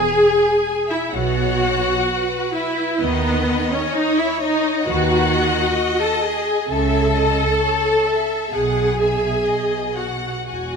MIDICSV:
0, 0, Header, 1, 6, 480
1, 0, Start_track
1, 0, Key_signature, 4, "major"
1, 0, Tempo, 938967
1, 1536, Time_signature, 4, 2, 24, 8
1, 2487, Tempo, 913242
1, 4407, Tempo, 952381
1, 4887, Tempo, 1022147
1, 5494, End_track
2, 0, Start_track
2, 0, Title_t, "Violin section"
2, 0, Program_c, 0, 48
2, 0, Note_on_c, 0, 80, 82
2, 433, Note_off_c, 0, 80, 0
2, 454, Note_on_c, 0, 76, 67
2, 576, Note_off_c, 0, 76, 0
2, 576, Note_on_c, 0, 78, 78
2, 1294, Note_off_c, 0, 78, 0
2, 1300, Note_on_c, 0, 76, 71
2, 1535, Note_on_c, 0, 71, 69
2, 1538, Note_off_c, 0, 76, 0
2, 1882, Note_off_c, 0, 71, 0
2, 1898, Note_on_c, 0, 73, 75
2, 2012, Note_on_c, 0, 75, 85
2, 2013, Note_off_c, 0, 73, 0
2, 2129, Note_on_c, 0, 76, 77
2, 2130, Note_off_c, 0, 75, 0
2, 2247, Note_on_c, 0, 75, 78
2, 2249, Note_off_c, 0, 76, 0
2, 2481, Note_off_c, 0, 75, 0
2, 2486, Note_on_c, 0, 78, 89
2, 3085, Note_off_c, 0, 78, 0
2, 3087, Note_on_c, 0, 81, 73
2, 3203, Note_off_c, 0, 81, 0
2, 3209, Note_on_c, 0, 80, 75
2, 3445, Note_off_c, 0, 80, 0
2, 3457, Note_on_c, 0, 81, 70
2, 4407, Note_on_c, 0, 80, 66
2, 4413, Note_off_c, 0, 81, 0
2, 5113, Note_on_c, 0, 78, 51
2, 5121, Note_off_c, 0, 80, 0
2, 5359, Note_off_c, 0, 78, 0
2, 5364, Note_on_c, 0, 78, 47
2, 5494, Note_off_c, 0, 78, 0
2, 5494, End_track
3, 0, Start_track
3, 0, Title_t, "Violin section"
3, 0, Program_c, 1, 48
3, 582, Note_on_c, 1, 73, 67
3, 1035, Note_off_c, 1, 73, 0
3, 1057, Note_on_c, 1, 71, 65
3, 1535, Note_on_c, 1, 75, 73
3, 1537, Note_off_c, 1, 71, 0
3, 1999, Note_off_c, 1, 75, 0
3, 2013, Note_on_c, 1, 73, 79
3, 2489, Note_off_c, 1, 73, 0
3, 2493, Note_on_c, 1, 71, 72
3, 2731, Note_off_c, 1, 71, 0
3, 2734, Note_on_c, 1, 75, 80
3, 3446, Note_off_c, 1, 75, 0
3, 3457, Note_on_c, 1, 76, 68
3, 3688, Note_on_c, 1, 75, 60
3, 3689, Note_off_c, 1, 76, 0
3, 3917, Note_on_c, 1, 73, 56
3, 3925, Note_off_c, 1, 75, 0
3, 4155, Note_off_c, 1, 73, 0
3, 4168, Note_on_c, 1, 76, 59
3, 4409, Note_off_c, 1, 76, 0
3, 4416, Note_on_c, 1, 78, 60
3, 4649, Note_off_c, 1, 78, 0
3, 4654, Note_on_c, 1, 76, 54
3, 4886, Note_off_c, 1, 76, 0
3, 4894, Note_on_c, 1, 75, 51
3, 5125, Note_off_c, 1, 75, 0
3, 5125, Note_on_c, 1, 78, 44
3, 5366, Note_off_c, 1, 78, 0
3, 5371, Note_on_c, 1, 80, 47
3, 5494, Note_off_c, 1, 80, 0
3, 5494, End_track
4, 0, Start_track
4, 0, Title_t, "Viola section"
4, 0, Program_c, 2, 48
4, 0, Note_on_c, 2, 68, 100
4, 457, Note_off_c, 2, 68, 0
4, 464, Note_on_c, 2, 64, 77
4, 580, Note_on_c, 2, 66, 87
4, 581, Note_off_c, 2, 64, 0
4, 1296, Note_off_c, 2, 66, 0
4, 1296, Note_on_c, 2, 64, 79
4, 1531, Note_off_c, 2, 64, 0
4, 1542, Note_on_c, 2, 59, 86
4, 1893, Note_off_c, 2, 59, 0
4, 1901, Note_on_c, 2, 61, 83
4, 2014, Note_off_c, 2, 61, 0
4, 2016, Note_on_c, 2, 63, 96
4, 2132, Note_off_c, 2, 63, 0
4, 2137, Note_on_c, 2, 64, 86
4, 2253, Note_off_c, 2, 64, 0
4, 2256, Note_on_c, 2, 63, 90
4, 2486, Note_off_c, 2, 63, 0
4, 2491, Note_on_c, 2, 66, 95
4, 3076, Note_off_c, 2, 66, 0
4, 3089, Note_on_c, 2, 69, 81
4, 3206, Note_off_c, 2, 69, 0
4, 3210, Note_on_c, 2, 68, 83
4, 3446, Note_off_c, 2, 68, 0
4, 3449, Note_on_c, 2, 69, 88
4, 4409, Note_off_c, 2, 69, 0
4, 4412, Note_on_c, 2, 68, 81
4, 5110, Note_off_c, 2, 68, 0
4, 5125, Note_on_c, 2, 66, 58
4, 5360, Note_off_c, 2, 66, 0
4, 5366, Note_on_c, 2, 66, 59
4, 5494, Note_off_c, 2, 66, 0
4, 5494, End_track
5, 0, Start_track
5, 0, Title_t, "Cello section"
5, 0, Program_c, 3, 48
5, 579, Note_on_c, 3, 47, 73
5, 975, Note_off_c, 3, 47, 0
5, 1541, Note_on_c, 3, 51, 73
5, 1932, Note_off_c, 3, 51, 0
5, 2489, Note_on_c, 3, 51, 79
5, 2888, Note_off_c, 3, 51, 0
5, 3446, Note_on_c, 3, 49, 74
5, 3843, Note_off_c, 3, 49, 0
5, 4407, Note_on_c, 3, 47, 59
5, 4805, Note_off_c, 3, 47, 0
5, 4888, Note_on_c, 3, 47, 45
5, 5284, Note_off_c, 3, 47, 0
5, 5367, Note_on_c, 3, 40, 45
5, 5494, Note_off_c, 3, 40, 0
5, 5494, End_track
6, 0, Start_track
6, 0, Title_t, "Double bass section"
6, 0, Program_c, 4, 48
6, 578, Note_on_c, 4, 35, 72
6, 974, Note_off_c, 4, 35, 0
6, 1538, Note_on_c, 4, 39, 73
6, 1931, Note_off_c, 4, 39, 0
6, 2493, Note_on_c, 4, 39, 76
6, 2890, Note_off_c, 4, 39, 0
6, 3447, Note_on_c, 4, 37, 68
6, 3844, Note_off_c, 4, 37, 0
6, 4412, Note_on_c, 4, 35, 58
6, 4807, Note_off_c, 4, 35, 0
6, 4888, Note_on_c, 4, 35, 47
6, 5284, Note_off_c, 4, 35, 0
6, 5367, Note_on_c, 4, 28, 39
6, 5494, Note_off_c, 4, 28, 0
6, 5494, End_track
0, 0, End_of_file